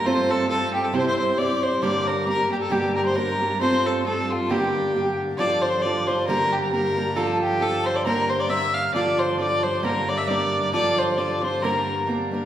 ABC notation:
X:1
M:2/4
L:1/16
Q:"Swing" 1/4=135
K:Gdor
V:1 name="Tin whistle"
c'2 a2 a2 g a | c' c' c'2 d'2 c'2 | d'4 b2 g a | g2 b c' b4 |
c'2 a2 a2 f2 | g6 z2 | d'2 c'2 d'2 c'2 | b2 g b b2 b2 |
a2 g2 a2 c'2 | b2 c'2 e'2 f'2 | d'2 c'2 d'2 c'2 | b2 d' e' d'4 |
d'2 c'2 d'2 c'2 | b4 z4 |]
V:2 name="Fiddle"
c2 A2 A2 G A | c/2 c/2 c c2 d2 c2 | d2 B2 B2 G A | G2 B c B4 |
c2 A2 A2 F2 | G6 z2 | d2 c2 d2 c2 | B2 G B B4 |
A2 G2 A2 c d | B2 c d e2 f2 | d2 c2 d2 c2 | B2 d e d4 |
d2 c2 d2 c2 | B4 z4 |]
V:3 name="Steel-string acoustic guitar"
[A,CFA]4 [A,CFA]4 | [C,G,CEG]4 [G,CEG]4 | [G,,D,G,B,DG]4 [G,B,DG]2 [G,B,DG]2 | [G,,D,G,B,DG]4 [G,B,DG]2 [G,B,DG]2 |
[A,CFA]4 [A,CFA]4 | [G,,D,G,B,DG]4 [G,B,DG]4 | [D,F,DFA]4 [F,DFA]2 [F,DFA]2 | [G,,D,G,B,DG]4 [G,B,DG]2 [G,B,DG]2 |
[D,F,DFA]4 [F,DFA]4 | [G,,D,G,B,DB]4 [G,B,DB]4 | [D,F,DFA]4 [F,DFA]4 | [G,,D,G,B,DB]4 [G,B,DB]4 |
[D,F,DFA]4 [F,DFA]2 [F,DFA]2 | [G,,D,G,B,DB]4 [G,B,DB]2 [G,B,DB]2 |]
V:4 name="Cello" clef=bass
G,,8- | G,,8 | G,,8- | G,,8- |
G,,8- | G,,8 | G,,8- | G,,8- |
G,,8- | G,,8 | G,,8- | G,,8- |
G,,8- | G,,8 |]